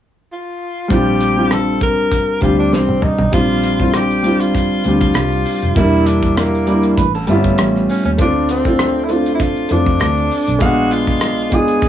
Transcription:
0.32 tenor saxophone F4
0.88 fingered electric bass A#1, grand piano G3 C4 D4 F4, kick, closed hi-hat
0.93 tenor saxophone G4
1.21 closed hi-hat
1.35 grand piano G3 C4 D4 F4
1.51 tenor saxophone A4, cross-stick, closed hi-hat
1.81 tenor saxophone A#4, kick, closed hi-hat
2.12 kick, closed hi-hat
2.41 fingered electric bass D2, grand piano G3 C4 D4 G4, tenor saxophone F4, kick, closed hi-hat
2.59 tenor saxophone D4
2.73 fingered electric bass C2, tenor saxophone C4, snare
2.89 high tom
3.02 tenor saxophone D#4, mid tom
3.19 fingered electric bass B1, floor tom
3.32 fingered electric bass A#1, grand piano G3 C4 D4 F4, tenor saxophone F4, kick, closed hi-hat
3.63 closed hi-hat
3.79 grand piano G3 C4 D4 F4, kick, closed hi-hat
3.94 tenor saxophone G4, cross-stick, closed hi-hat
4.11 closed hi-hat
4.23 grand piano G3 C4 D4 F4, closed hi-hat
4.40 tenor saxophone F4, closed hi-hat
4.55 kick, closed hi-hat
4.84 fingered electric bass D2, grand piano G3 C4 D4 G4, closed hi-hat
5.00 tenor saxophone F4, kick, closed hi-hat
5.14 fingered electric bass C2, cross-stick, closed hi-hat
5.33 closed hi-hat
5.45 open hi-hat
5.62 fingered electric bass F1, closed hi-hat
5.76 fingered electric bass E1, grand piano G3 A#3 D4 E4, tenor saxophone E4, kick, closed hi-hat
6.06 tenor saxophone D4, closed hi-hat
6.23 kick, closed hi-hat
6.37 tenor saxophone A#3, cross-stick, closed hi-hat
6.55 closed hi-hat
6.67 grand piano G3 A#3 D4 E4, clean electric guitar D5, closed hi-hat
6.83 closed hi-hat
6.97 fingered electric bass A1, clean electric guitar B4, kick, closed hi-hat
7.15 clean electric guitar C#4 A4, closed hi-hat
7.27 fingered electric bass G1, grand piano G3 B3 F4 E5, clean electric guitar B3 G4, closed hi-hat
7.35 grand piano C#4
7.44 clean electric guitar A3 F4, kick, closed hi-hat
7.58 fingered electric bass A1, cross-stick, closed hi-hat
7.75 cross-stick
7.89 tenor saxophone C#4, open hi-hat
8.05 fingered electric bass D#2, tenor saxophone C#4, closed hi-hat
8.18 fingered electric bass D2, grand piano A3 C4 D4 F4, tenor saxophone D4, kick, closed hi-hat
8.49 tenor saxophone C4, closed hi-hat
8.64 grand piano A3 C4 D4 F4, kick, closed hi-hat
8.79 cross-stick, closed hi-hat
9.04 grand piano A3, tenor saxophone E4
9.09 grand piano C4 D4 F4, tenor saxophone F4, closed hi-hat
9.26 closed hi-hat
9.34 tenor saxophone E4
9.40 tenor saxophone F4, kick, closed hi-hat
9.56 closed hi-hat
9.69 fingered electric bass F2, grand piano A3 C4 D4 F4, tenor saxophone D4, closed hi-hat
9.86 kick, closed hi-hat
10.00 fingered electric bass D2, cross-stick, closed hi-hat
10.18 closed hi-hat
10.31 open hi-hat
10.48 fingered electric bass B1, closed hi-hat
10.59 fingered electric bass A#1, grand piano G#3 B3 D4 F5, tenor saxophone F#4, kick, closed hi-hat
10.91 tenor saxophone F4, closed hi-hat
11.07 kick, closed hi-hat
11.21 cross-stick, closed hi-hat
11.50 grand piano G#3 B3 D4 F4, kick, closed hi-hat
11.54 tenor saxophone G#4
11.68 closed hi-hat
11.82 kick, closed hi-hat

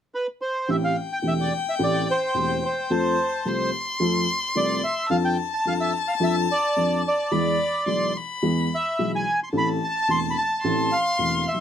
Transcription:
0.15 bandoneon B4
0.42 bandoneon C5
0.68 upright piano A1 A2 E3 A3 C4 G4, bandoneon E5, violin G5
0.84 bandoneon F5
1.13 bandoneon G5
1.22 upright piano E1 E2 E3 A3 C4 G4
1.28 bandoneon E5
1.41 bandoneon D5
1.69 bandoneon E5
1.79 upright piano A1 A2 E3 A3 C4 G4
1.84 bandoneon D5
2.11 bandoneon C5
2.34 upright piano E1 E2 E3 A3 C4 G4
2.65 bandoneon C5
2.90 upright piano F2 F3 A3 C4 A4, violin A5
3.45 upright piano C2 C3 F3 A3 C4 A4, violin C6
4.00 upright piano F2 F3 A3 C4 A4
4.55 upright piano C2 C3 F3 A3 C4 A4, bandoneon D5
4.84 bandoneon E5
5.10 upright piano F2 F3 C4 D4 A4, bandoneon F5, violin A5
5.25 bandoneon G5
5.54 bandoneon A5
5.65 upright piano F2 F3 C4 D4 A4, bandoneon F5
5.81 bandoneon E5
6.08 bandoneon F5
6.20 upright piano F2 F3 C4 D4 A4, bandoneon E5
6.52 bandoneon D5
6.76 upright piano F2 F3 C4 D4 A4
7.08 bandoneon D5
7.31 upright piano E2 E3 G#3 B3 G#4, violin B5
7.86 upright piano B1 B2 E3 G#3 B3 G#4, violin C6
8.17 violin B5
8.42 upright piano E2 E3 G#3 B3 G#4
8.75 bandoneon E5
8.99 upright piano B1 B2 E3 G#3 B3 G#4
9.15 bandoneon G#5
9.43 bandoneon C6
9.53 upright piano A1 A2 E3 A3 C4 A4, violin A5
9.58 bandoneon B5
9.84 bandoneon A5
10.08 upright piano E1 E2 E3 A3 C4 A4, bandoneon C6
10.30 bandoneon B5
10.38 bandoneon A5
10.62 upright piano A1 A2 E3 A3 C4 A4, violin C6
10.92 bandoneon F5
11.19 upright piano E1 E2 E3 A3 C4 A4
11.48 bandoneon E5
11.54 upright piano B1

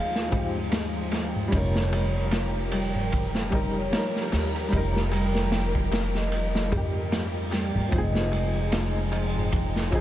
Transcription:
Already playing: upright bass D#2, upright piano F3 C4 D#4 G#4, harp F3 G#3 C4, string section F3 G#3 D#4, soft synth lead F5
0.15 snare, darbuka tek
0.28 upright piano F3 C4, harp G#3, ride
0.32 upright piano D#4, kick, darbuka tek, darbuka dum
0.37 upright piano G4
0.55 darbuka tek
0.72 snare, ride, darbuka tek
1.11 harp C4, snare, ride, darbuka tek
1.35 darbuka tek, darbuka dum
1.48 upright piano G3 C#4, string section G4 A#4
1.52 upright bass F1, harp F3, upright piano D#4, soft synth lead C#5, kick, ride, darbuka tek
1.57 upright piano A#4
1.75 snare
1.93 ride, darbuka tek
2.16 darbuka tek
2.31 harp F3, snare, ride, darbuka tek
2.71 harp G3, ride, darbuka tek
2.95 darbuka tek, darbuka dum
3.12 kick, ride, darbuka tek
3.35 snare, darbuka tek
3.50 upright piano G3 D#4, harp C4, kick, ride, darbuka tek
3.55 upright piano A#4
3.74 soft synth lead C#5, darbuka tek
3.91 harp F3, upright piano G3 D#4, snare, ride, darbuka tek
3.95 upright piano A#4
4.16 snare
4.32 upright bass D#2, snare, open hi-hat, darbuka tek
4.54 ride, darbuka tek
4.68 harp F3, upright piano G3
4.73 upright bass F1, upright piano D#4, kick, ride, darbuka tek
4.77 upright piano A#4
4.96 snare
5.12 harp G3, ride, darbuka tek
5.35 snare, darbuka tek
5.52 snare, ride, darbuka tek
5.75 kick
5.92 harp C4, snare, ride, darbuka tek
6.15 soft synth lead D#5, snare, darbuka tek
6.32 harp F3, ride, darbuka tek
6.55 snare, darbuka tek
6.68 upright piano G3, kick
6.72 upright bass F2, upright piano D#4, ride, darbuka tek, darbuka dum
6.77 upright piano G4
6.94 darbuka tek
7.11 harp F3, snare, ride, darbuka tek
7.51 harp G3, snare, ride, darbuka tek
7.74 upright bass D#2, darbuka tek, darbuka dum
7.89 upright piano F3 C4, harp F3, string section G#3 D#4, kick, ride, darbuka tek
7.93 upright bass F1, upright piano D#4, soft synth lead D#5
7.98 upright piano G#4
8.15 snare
8.32 harp G#3, ride, darbuka tek
8.55 darbuka tek
8.72 snare, ride, darbuka tek
9.12 harp C4, ride, darbuka tek
9.35 darbuka tek, darbuka dum
9.52 harp F3, kick, ride, darbuka tek
9.76 snare, darbuka tek
9.91 upright piano F3 C4 D#4, kick, ride, darbuka tek
9.95 upright piano G#4

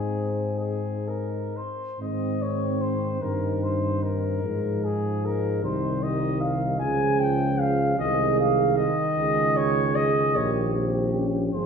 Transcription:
Already playing: tuba G#2, euphonium C4, trombone C4, french horn section D#4, flugelhorn G#4
0.59 flugelhorn G#4
1.08 flugelhorn A#4
1.56 flugelhorn C5
1.99 tuba G#2, trombone D#3, french horn section C4, euphonium C4, flugelhorn D#5
2.42 flugelhorn C#5
2.82 flugelhorn C5
3.20 tuba G2, french horn section D#4, flugelhorn A#4
3.63 flugelhorn C5
4.03 flugelhorn A#4
4.42 tuba G#2, trombone F3, euphonium G#3, french horn section D#4
4.84 flugelhorn G#4
5.25 flugelhorn A#4
5.63 tuba C2, trombone D#3, euphonium G3, french horn section D#4, flugelhorn C5
6.03 flugelhorn D#5
6.40 flugelhorn F5
6.79 tuba C#2, trombone C#3, euphonium F3, french horn section G#4, flugelhorn G#5
7.19 flugelhorn G5
7.60 flugelhorn F5
7.98 tuba C2, trombone D#3, euphonium G#3, flugelhorn D#5
8.39 flugelhorn F5
8.76 flugelhorn D#5
9.17 tuba C#2, euphonium G#3, french horn section G#4
9.56 flugelhorn C#5
9.95 flugelhorn D#5
10.35 tuba A#1, euphonium A#3, french horn section G4, flugelhorn C#5
10.75 euphonium C4
11.13 euphonium C#4
11.53 tuba G#1, trombone F3, euphonium C4, french horn section G#4, flugelhorn C5

